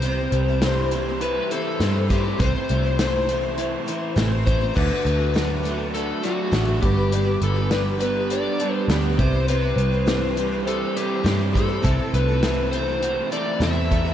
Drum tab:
CC |--------|--------|x-------|--------|
HH |xxxxxxxx|xxxxxxxx|-xxxxxxx|xxxxxxxx|
SD |--o---o-|--o---o-|--o---o-|--o---o-|
BD |-------o|o------o|o------o|-------o|

CC |--------|--------|
HH |xxxxxxxx|xxxxxxxx|
SD |--o---o-|--o---o-|
BD |-------o|o------o|